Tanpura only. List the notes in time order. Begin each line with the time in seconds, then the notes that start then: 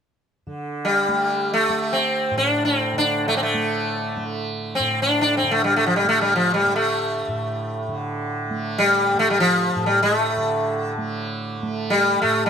0.47 D3
1.08 A3
1.69 A3
2.31 A2
2.93 D3
3.54 A3
4.17 A3
4.79 A2
5.43 D3
6.04 A3
6.66 A3
7.28 A2
7.88 D3
8.50 A3
9.15 A3
9.76 A2
10.37 D3
10.98 A3
11.62 A3
12.23 A2